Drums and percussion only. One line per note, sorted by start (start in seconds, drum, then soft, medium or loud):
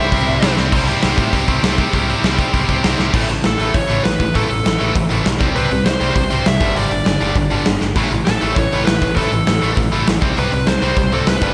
0.12 kick loud
0.12 open hi-hat medium
0.42 snare loud
0.42 open hi-hat medium
0.57 snare medium
0.72 kick loud
0.72 crash loud
0.87 open hi-hat medium
1.02 snare loud
1.02 open hi-hat medium
1.18 kick loud
1.18 open hi-hat medium
1.33 kick medium
1.33 open hi-hat medium
1.48 kick medium
1.48 open hi-hat medium
1.64 snare loud
1.64 open hi-hat medium
1.78 kick medium
1.78 open hi-hat medium
1.93 kick medium
1.93 open hi-hat medium
2.09 open hi-hat medium
2.24 snare loud
2.24 open hi-hat medium
2.39 kick medium
2.39 open hi-hat medium
2.54 kick medium
2.54 open hi-hat medium
2.69 kick medium
2.69 open hi-hat medium
2.84 snare loud
2.84 open hi-hat medium
2.99 snare medium
3.14 kick loud
3.14 crash loud
3.29 open hi-hat medium
3.44 snare loud
3.44 open hi-hat medium
3.59 open hi-hat medium
3.74 kick loud
3.74 open hi-hat medium
3.89 open hi-hat medium
4.05 snare loud
4.05 open hi-hat medium
4.20 kick medium
4.20 open hi-hat medium
4.35 kick medium
4.35 open hi-hat medium
4.50 open hi-hat medium
4.66 snare loud
4.66 open hi-hat medium
4.80 open hi-hat medium
4.95 kick loud
4.95 open hi-hat medium
5.11 open hi-hat medium
5.26 snare loud
5.26 open hi-hat medium
5.41 kick loud
5.41 open hi-hat medium
5.56 open hi-hat medium
5.71 open hi-hat medium
5.86 snare loud
5.86 open hi-hat medium
6.01 open hi-hat medium
6.16 kick loud
6.16 open hi-hat medium
6.31 open hi-hat medium
6.46 snare loud
6.46 open hi-hat medium
6.61 kick loud
6.61 open hi-hat medium
6.76 open hi-hat medium
6.91 open hi-hat medium
7.06 snare medium
7.06 open hi-hat medium
7.21 open hi-hat medium
7.35 kick loud
7.35 open hi-hat medium
7.50 open hi-hat medium
7.66 snare loud
7.66 open hi-hat medium
7.81 snare medium
7.96 kick loud
7.96 open hi-hat medium
7.96 splash medium
8.11 open hi-hat medium
8.27 snare loud
8.27 open hi-hat medium
8.41 open hi-hat medium
8.56 kick loud
8.56 open hi-hat medium
8.72 open hi-hat medium
8.87 snare loud
8.87 open hi-hat medium
9.02 kick medium
9.02 open hi-hat medium
9.17 kick medium
9.17 open hi-hat medium
9.32 open hi-hat medium
9.47 snare loud
9.47 open hi-hat medium
9.62 open hi-hat medium
9.77 kick loud
9.77 open hi-hat medium
9.93 open hi-hat medium
10.07 snare loud
10.07 open hi-hat medium
10.22 kick loud
10.22 open hi-hat medium
10.37 open hi-hat medium
10.52 open hi-hat medium
10.67 snare loud
10.67 open hi-hat medium
10.82 open hi-hat medium
10.97 kick loud
10.97 open hi-hat medium
11.12 open hi-hat medium
11.27 snare loud
11.27 open hi-hat medium
11.42 kick loud
11.42 open hi-hat medium